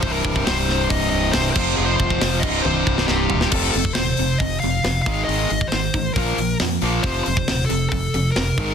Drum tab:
CC |--------------x-|------x---------|x---------------|----------------|
HH |o---o---o---o---|----o-----------|--o-o-o-o-o-o-o-|o-o-o---o-o-o-o-|
SD |----o-o-----o---|----o------oo--o|----o-------o---|----o-------o---|
T1 |----------------|--------o-------|----------------|----------------|
FT |----------------|--------------o-|----------------|----------------|
BD |o-oo----o-----o-|--oo--o---o-----|o--o----o-----o-|---o--o-o-------|

CC |----------------|
HH |o-o-o-o-o-o-o---|
SD |----o-------o---|
T1 |----------------|
FT |----------------|
BD |o--o----o-----o-|